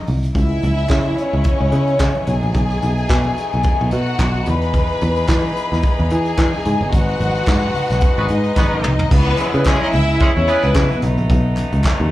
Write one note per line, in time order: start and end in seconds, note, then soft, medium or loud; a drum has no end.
0.07 0.29 C2 medium
0.07 open hi-hat medium
0.07 muted conga soft
0.07 low conga medium
0.23 closed hi-hat soft
0.34 0.57 C#2 medium
0.34 2.26 C#3 medium
0.34 2.26 G#3 medium
0.34 6.89 B3 medium
0.34 1.16 E4 medium
0.34 2.26 E4 medium
0.34 1.16 E5 medium
0.34 kick loud
0.34 closed hi-hat medium
0.34 muted conga soft
0.34 low conga medium
0.51 closed hi-hat soft
0.62 0.84 C#2 medium
0.62 closed hi-hat medium
0.62 muted conga soft
0.62 high conga medium
0.78 closed hi-hat soft
0.78 high conga medium
0.89 1.11 C#3 medium
0.89 kick loud
0.89 snare loud
0.89 clap medium
0.92 clap medium
1.05 closed hi-hat soft
1.05 high conga medium
1.17 2.25 C#4 medium
1.17 2.25 C#5 medium
1.17 closed hi-hat medium
1.17 muted conga soft
1.33 1.43 C#2 medium
1.33 closed hi-hat soft
1.44 kick loud
1.44 closed hi-hat medium
1.44 muted conga soft
1.44 high conga medium
1.61 1.70 C#2 medium
1.72 1.94 C#3 medium
1.72 closed hi-hat medium
1.87 closed hi-hat soft
2.00 2.12 C#3 medium
2.00 kick loud
2.00 snare medium
2.00 clap medium
2.00 muted conga soft
2.00 high conga medium
2.15 closed hi-hat soft
2.15 high conga medium
2.27 2.39 B1 medium
2.27 4.45 A3 medium
2.27 8.94 D#4 medium
2.27 3.89 G#4 medium
2.27 3.89 G#5 medium
2.27 closed hi-hat medium
2.27 muted conga soft
2.27 low conga medium
2.42 2.52 A#1 medium
2.42 closed hi-hat soft
2.54 2.76 B1 loud
2.54 kick loud
2.54 closed hi-hat medium
2.54 muted conga soft
2.54 low conga medium
2.70 closed hi-hat soft
2.82 3.04 B1 loud
2.82 closed hi-hat medium
2.82 high conga medium
2.97 closed hi-hat soft
2.97 high conga medium
3.10 3.31 B2 medium
3.10 kick loud
3.10 snare loud
3.10 clap medium
3.11 clap medium
3.25 high conga medium
3.36 closed hi-hat medium
3.36 muted conga soft
3.52 3.63 B1 medium
3.52 closed hi-hat soft
3.63 kick loud
3.63 closed hi-hat medium
3.63 high conga medium
3.79 3.90 B1 medium
3.79 closed hi-hat soft
3.91 4.14 B2 medium
3.91 4.46 F#4 medium
3.91 4.46 F#5 medium
3.91 closed hi-hat medium
3.91 muted conga soft
4.06 closed hi-hat soft
4.19 4.40 B1 medium
4.19 kick loud
4.19 snare medium
4.19 clap loud
4.19 clap medium
4.19 muted conga soft
4.19 high conga medium
4.34 high conga medium
4.46 4.90 E2 loud
4.46 6.91 E3 medium
4.46 6.91 G#4 medium
4.46 6.08 B4 medium
4.46 6.08 B5 medium
4.46 closed hi-hat medium
4.46 low conga medium
4.61 closed hi-hat soft
4.73 kick loud
4.73 closed hi-hat medium
4.73 low conga medium
4.89 closed hi-hat soft
5.01 5.23 E2 loud
5.01 closed hi-hat medium
5.01 high conga medium
5.16 closed hi-hat soft
5.16 high conga medium
5.28 5.50 E3 loud
5.28 kick loud
5.28 snare loud
5.28 clap medium
5.31 clap medium
5.43 closed hi-hat soft
5.43 high conga medium
5.55 closed hi-hat medium
5.55 muted conga soft
5.71 5.81 E2 medium
5.71 snare soft
5.71 closed hi-hat soft
5.82 kick loud
5.82 closed hi-hat medium
5.82 muted conga soft
5.82 high conga medium
5.99 6.09 E2 medium
6.10 6.33 E3 medium
6.10 6.92 G#4 medium
6.10 6.91 G#5 medium
6.10 closed hi-hat medium
6.10 muted conga soft
6.25 closed hi-hat soft
6.38 6.50 E3 medium
6.38 kick loud
6.38 snare medium
6.38 clap medium
6.38 high conga medium
6.54 closed hi-hat soft
6.54 high conga medium
6.65 6.78 G#2 medium
6.65 closed hi-hat medium
6.65 muted conga soft
6.65 low conga medium
6.81 6.90 G1 loud
6.81 closed hi-hat soft
6.92 7.14 G#1 loud
6.92 8.94 G#3 medium
6.92 8.27 F#4 medium
6.92 8.94 F#4 medium
6.92 8.94 B4 medium
6.92 8.27 F#5 medium
6.92 kick loud
6.92 closed hi-hat medium
6.92 muted conga soft
6.92 low conga medium
7.08 closed hi-hat soft
7.20 7.42 G#1 loud
7.20 closed hi-hat medium
7.20 muted conga soft
7.20 high conga medium
7.35 closed hi-hat soft
7.47 7.69 G#2 loud
7.47 kick loud
7.47 snare loud
7.47 clap medium
7.49 clap medium
7.62 closed hi-hat soft
7.62 high conga medium
7.74 open hi-hat medium
7.74 muted conga soft
7.74 low conga medium
7.90 8.00 B1 medium
7.90 snare soft
7.90 closed hi-hat soft
8.01 kick loud
8.01 closed hi-hat loud
8.01 muted conga soft
8.01 high conga medium
8.17 8.27 G#1 loud
8.17 8.25 B3 medium
8.17 8.25 F#4 medium
8.17 8.25 G#4 medium
8.17 8.25 B4 medium
8.17 closed hi-hat soft
8.28 8.51 G#2 medium
8.28 9.10 D#4 medium
8.28 9.10 D#5 medium
8.28 closed hi-hat medium
8.43 closed hi-hat soft
8.56 8.84 G#1 medium
8.56 8.93 B3 medium
8.56 8.93 F#4 loud
8.56 8.93 G#4 loud
8.56 8.93 B4 loud
8.56 kick loud
8.56 snare medium
8.56 clap loud
8.56 muted conga soft
8.56 high conga medium
8.71 high conga medium
8.83 9.06 C2 medium
8.83 mid tom medium
8.83 low conga medium
8.99 floor tom medium
9.11 9.33 C#2 loud
9.11 11.01 C#3 medium
9.11 11.01 G#3 medium
9.11 9.63 B3 loud
9.11 12.11 B3 medium
9.11 11.01 E4 medium
9.11 9.63 B4 loud
9.11 kick loud
9.11 crash loud
9.11 low conga medium
9.38 9.51 G#3 medium
9.38 9.51 C#4 medium
9.38 9.51 E4 medium
9.38 9.51 G#4 medium
9.38 clap medium
9.38 closed hi-hat medium
9.38 muted conga soft
9.38 high conga medium
9.53 9.75 C#3 medium
9.53 9.63 B3 medium
9.53 9.63 E4 medium
9.53 9.64 G#4 medium
9.53 9.63 B4 medium
9.53 closed hi-hat soft
9.65 9.88 G#3 loud
9.65 9.78 C#4 medium
9.65 9.88 C#4 loud
9.65 9.88 E4 loud
9.65 9.88 G#4 loud
9.65 9.78 C#5 loud
9.65 kick loud
9.65 snare loud
9.65 clap loud
9.68 clap loud
9.80 9.91 D#4 medium
9.80 9.91 D#5 loud
9.80 closed hi-hat soft
9.80 high conga medium
9.92 10.15 C#2 medium
9.92 10.14 E4 medium
9.92 10.15 E5 loud
9.92 closed hi-hat medium
9.92 muted conga soft
9.92 low conga medium
10.08 closed hi-hat soft
10.19 10.30 G#3 loud
10.19 10.30 C#4 loud
10.19 10.30 E4 medium
10.19 10.30 G#4 loud
10.19 kick loud
10.19 closed hi-hat medium
10.19 muted conga soft
10.19 high conga medium
10.35 10.46 E2 medium
10.35 10.45 C#4 medium
10.35 10.45 C#5 medium
10.47 10.69 B3 loud
10.47 10.69 E4 loud
10.47 10.70 G#4 loud
10.47 10.69 B4 loud
10.47 closed hi-hat medium
10.47 muted conga soft
10.62 10.73 C#2 medium
10.62 11.00 B3 medium
10.62 11.00 B4 medium
10.62 closed hi-hat soft
10.75 10.87 C#3 loud
10.75 kick loud
10.75 snare medium
10.75 clap loud
10.75 clap medium
10.75 muted conga soft
10.75 high conga medium
10.91 closed hi-hat soft
10.91 high conga medium
11.02 11.15 B1 loud
11.02 12.11 A3 medium
11.02 12.11 D#4 loud
11.02 closed hi-hat medium
11.02 muted conga soft
11.02 low conga medium
11.17 11.27 A#1 medium
11.17 closed hi-hat soft
11.30 11.63 B1 loud
11.30 kick loud
11.30 closed hi-hat medium
11.30 muted conga soft
11.30 low conga medium
11.57 clap medium
11.57 closed hi-hat medium
11.57 muted conga soft
11.57 high conga medium
11.72 11.82 C#2 medium
11.72 closed hi-hat soft
11.84 kick loud
11.84 snare loud
11.84 clap medium
11.84 muted conga soft
11.87 clap loud
11.99 12.09 D#2 medium
11.99 closed hi-hat soft
11.99 high conga medium